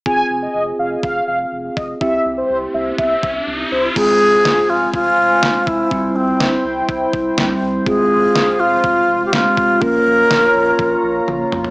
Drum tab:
CC |----------------|----------------|x---------------|----------------|
SD |----------------|----------------|----o-------o---|----o-------o---|
T1 |----------------|----------------|----------------|----------------|
T2 |----------------|----------------|----------------|----------------|
FT |----------------|----------------|----------------|----------------|
BD |o-------o-----o-|o-------o-o-----|o-------o-----o-|o-------o-o-----|

CC |----------------|----------------|
SD |----o-------o---|----o-----------|
T1 |----------------|------------o---|
T2 |----------------|--------------o-|
FT |----------------|---------------o|
BD |o-------o-----o-|o-------o-------|